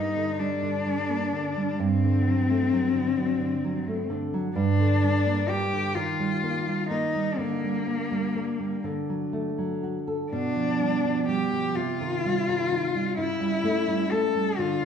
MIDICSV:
0, 0, Header, 1, 3, 480
1, 0, Start_track
1, 0, Key_signature, -2, "minor"
1, 0, Tempo, 930233
1, 929, Time_signature, 6, 3, 24, 8
1, 3317, Tempo, 969305
1, 6197, Tempo, 937500
1, 7531, End_track
2, 0, Start_track
2, 0, Title_t, "Cello"
2, 0, Program_c, 0, 42
2, 0, Note_on_c, 0, 63, 51
2, 201, Note_on_c, 0, 62, 47
2, 209, Note_off_c, 0, 63, 0
2, 934, Note_on_c, 0, 60, 62
2, 942, Note_off_c, 0, 62, 0
2, 2118, Note_off_c, 0, 60, 0
2, 2357, Note_on_c, 0, 62, 69
2, 2833, Note_on_c, 0, 67, 62
2, 2841, Note_off_c, 0, 62, 0
2, 3070, Note_on_c, 0, 65, 63
2, 3077, Note_off_c, 0, 67, 0
2, 3548, Note_off_c, 0, 65, 0
2, 3551, Note_on_c, 0, 63, 56
2, 3791, Note_on_c, 0, 58, 53
2, 3798, Note_off_c, 0, 63, 0
2, 4513, Note_off_c, 0, 58, 0
2, 5244, Note_on_c, 0, 62, 63
2, 5701, Note_off_c, 0, 62, 0
2, 5721, Note_on_c, 0, 67, 60
2, 5954, Note_on_c, 0, 65, 63
2, 5961, Note_off_c, 0, 67, 0
2, 6674, Note_off_c, 0, 65, 0
2, 6677, Note_on_c, 0, 64, 78
2, 7157, Note_on_c, 0, 69, 72
2, 7164, Note_off_c, 0, 64, 0
2, 7394, Note_on_c, 0, 65, 79
2, 7402, Note_off_c, 0, 69, 0
2, 7531, Note_off_c, 0, 65, 0
2, 7531, End_track
3, 0, Start_track
3, 0, Title_t, "Nylon-string guitar"
3, 0, Program_c, 1, 24
3, 0, Note_on_c, 1, 43, 37
3, 0, Note_on_c, 1, 55, 30
3, 79, Note_on_c, 1, 50, 27
3, 154, Note_off_c, 1, 55, 0
3, 203, Note_on_c, 1, 55, 30
3, 273, Note_off_c, 1, 50, 0
3, 323, Note_on_c, 1, 50, 29
3, 396, Note_off_c, 1, 55, 0
3, 444, Note_on_c, 1, 55, 32
3, 516, Note_off_c, 1, 50, 0
3, 565, Note_on_c, 1, 58, 29
3, 638, Note_off_c, 1, 55, 0
3, 686, Note_on_c, 1, 50, 33
3, 760, Note_off_c, 1, 58, 0
3, 808, Note_on_c, 1, 55, 36
3, 881, Note_off_c, 1, 50, 0
3, 907, Note_off_c, 1, 43, 0
3, 925, Note_on_c, 1, 43, 46
3, 930, Note_off_c, 1, 55, 0
3, 1048, Note_on_c, 1, 50, 31
3, 1174, Note_on_c, 1, 54, 34
3, 1240, Note_off_c, 1, 50, 0
3, 1288, Note_on_c, 1, 57, 38
3, 1362, Note_off_c, 1, 54, 0
3, 1407, Note_on_c, 1, 54, 36
3, 1477, Note_off_c, 1, 57, 0
3, 1520, Note_on_c, 1, 50, 33
3, 1594, Note_off_c, 1, 54, 0
3, 1638, Note_on_c, 1, 54, 39
3, 1709, Note_off_c, 1, 50, 0
3, 1755, Note_on_c, 1, 50, 37
3, 1827, Note_off_c, 1, 54, 0
3, 1879, Note_on_c, 1, 54, 37
3, 1946, Note_off_c, 1, 50, 0
3, 1999, Note_on_c, 1, 57, 36
3, 2069, Note_off_c, 1, 54, 0
3, 2114, Note_on_c, 1, 50, 40
3, 2190, Note_off_c, 1, 57, 0
3, 2237, Note_on_c, 1, 54, 41
3, 2307, Note_off_c, 1, 50, 0
3, 2333, Note_off_c, 1, 43, 0
3, 2350, Note_on_c, 1, 43, 51
3, 2357, Note_off_c, 1, 54, 0
3, 2472, Note_on_c, 1, 50, 35
3, 2594, Note_on_c, 1, 55, 37
3, 2666, Note_off_c, 1, 50, 0
3, 2716, Note_on_c, 1, 58, 37
3, 2787, Note_off_c, 1, 55, 0
3, 2841, Note_on_c, 1, 55, 36
3, 2908, Note_off_c, 1, 58, 0
3, 2957, Note_on_c, 1, 50, 31
3, 3031, Note_off_c, 1, 55, 0
3, 3053, Note_off_c, 1, 43, 0
3, 3076, Note_on_c, 1, 51, 45
3, 3077, Note_off_c, 1, 50, 0
3, 3195, Note_on_c, 1, 55, 36
3, 3318, Note_on_c, 1, 58, 35
3, 3388, Note_off_c, 1, 55, 0
3, 3436, Note_on_c, 1, 55, 31
3, 3506, Note_off_c, 1, 58, 0
3, 3551, Note_on_c, 1, 58, 33
3, 3626, Note_off_c, 1, 55, 0
3, 3674, Note_on_c, 1, 55, 34
3, 3743, Note_off_c, 1, 58, 0
3, 3773, Note_off_c, 1, 51, 0
3, 3790, Note_on_c, 1, 50, 41
3, 3793, Note_off_c, 1, 55, 0
3, 3914, Note_on_c, 1, 55, 30
3, 4029, Note_on_c, 1, 58, 31
3, 4106, Note_off_c, 1, 55, 0
3, 4150, Note_on_c, 1, 55, 30
3, 4223, Note_off_c, 1, 58, 0
3, 4270, Note_on_c, 1, 58, 28
3, 4344, Note_off_c, 1, 55, 0
3, 4390, Note_on_c, 1, 55, 28
3, 4464, Note_off_c, 1, 58, 0
3, 4493, Note_off_c, 1, 50, 0
3, 4511, Note_on_c, 1, 50, 40
3, 4513, Note_off_c, 1, 55, 0
3, 4635, Note_on_c, 1, 54, 31
3, 4753, Note_on_c, 1, 57, 31
3, 4832, Note_off_c, 1, 54, 0
3, 4878, Note_on_c, 1, 54, 29
3, 4952, Note_off_c, 1, 57, 0
3, 5003, Note_on_c, 1, 66, 34
3, 5076, Note_off_c, 1, 54, 0
3, 5122, Note_on_c, 1, 69, 34
3, 5197, Note_off_c, 1, 66, 0
3, 5224, Note_off_c, 1, 50, 0
3, 5243, Note_off_c, 1, 69, 0
3, 5247, Note_on_c, 1, 47, 44
3, 5362, Note_on_c, 1, 53, 32
3, 5478, Note_on_c, 1, 55, 32
3, 5553, Note_off_c, 1, 53, 0
3, 5598, Note_on_c, 1, 53, 35
3, 5671, Note_off_c, 1, 55, 0
3, 5718, Note_on_c, 1, 55, 30
3, 5792, Note_off_c, 1, 53, 0
3, 5838, Note_on_c, 1, 53, 30
3, 5912, Note_off_c, 1, 55, 0
3, 5943, Note_off_c, 1, 47, 0
3, 5958, Note_on_c, 1, 48, 42
3, 5960, Note_off_c, 1, 53, 0
3, 6077, Note_on_c, 1, 51, 35
3, 6200, Note_on_c, 1, 55, 38
3, 6271, Note_off_c, 1, 51, 0
3, 6319, Note_on_c, 1, 51, 35
3, 6392, Note_off_c, 1, 55, 0
3, 6440, Note_on_c, 1, 63, 40
3, 6510, Note_off_c, 1, 51, 0
3, 6556, Note_on_c, 1, 55, 44
3, 6630, Note_off_c, 1, 63, 0
3, 6656, Note_off_c, 1, 48, 0
3, 6676, Note_on_c, 1, 49, 52
3, 6677, Note_off_c, 1, 55, 0
3, 6789, Note_on_c, 1, 55, 40
3, 6910, Note_on_c, 1, 57, 43
3, 6986, Note_off_c, 1, 55, 0
3, 7034, Note_on_c, 1, 55, 43
3, 7107, Note_off_c, 1, 57, 0
3, 7157, Note_on_c, 1, 57, 40
3, 7230, Note_off_c, 1, 55, 0
3, 7275, Note_on_c, 1, 55, 37
3, 7351, Note_off_c, 1, 57, 0
3, 7379, Note_off_c, 1, 49, 0
3, 7398, Note_off_c, 1, 55, 0
3, 7398, Note_on_c, 1, 50, 58
3, 7531, Note_off_c, 1, 50, 0
3, 7531, End_track
0, 0, End_of_file